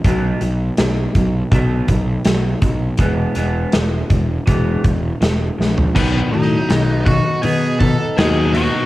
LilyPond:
<<
  \new Staff \with { instrumentName = "Lead electric guitar" } { \time 4/4 \key b \dorian \tempo 4 = 81 r1 | r1 | <b b'>8 <dis' dis''>4 <fis' fis''>8 <gis' gis''>8 <a' a''>8 <gis' gis''>8 <fis' fis''>8 | }
  \new Staff \with { instrumentName = "Clean electric guitar" } { \clef bass \time 4/4 \key b \dorian <b, fis b>8 <b, fis>8 <b, fis>8 <b, fis>8 <b, fis b>8 <b, fis>8 <b, fis>8 <b, fis>8 | <e gis b>8 <e gis b>8 <e gis>8 <e gis>8 <e gis b>8 <e gis>8 <e gis>8 <e gis>8 | b,8 fis8 b8 dis'8 b8 dis'8 fis8 dis8 | }
  \new Staff \with { instrumentName = "Distorted electric guitar" } { \clef bass \time 4/4 \key b \dorian r1 | r1 | <b, dis fis>8 <b, dis>8 <b, dis>8 <b, dis>8 <b, dis>8 <b, dis>8 <b, dis fis>8 <b, dis fis>8 | }
  \new Staff \with { instrumentName = "Picked electric bass" } { \clef bass \time 4/4 \key b \dorian b,,8 b,,8 b,,8 b,,8 b,,8 b,,8 b,,8 b,,8 | e,,8 e,,8 e,,8 e,,8 e,,8 e,,8 e,,8 ais,,8 | b,,8 a,8 b,,4 b,4 dis,4 | }
  \new DrumStaff \with { instrumentName = "Drums" } \drummode { \time 4/4 <hh bd>8 hh8 <hh sn>8 <hh bd>8 <hh bd>8 <hh bd>8 <hh sn>8 <hh bd>8 | <hh bd>8 hh8 <hh sn>8 <hh bd>8 <hh bd>8 <hh bd>8 <hh sn>8 sn16 tomfh16 | <cymc bd>8 hho8 <hho sn>8 <hho bd>8 hho8 <hho bd>8 <hho sn>8 hho8 | }
>>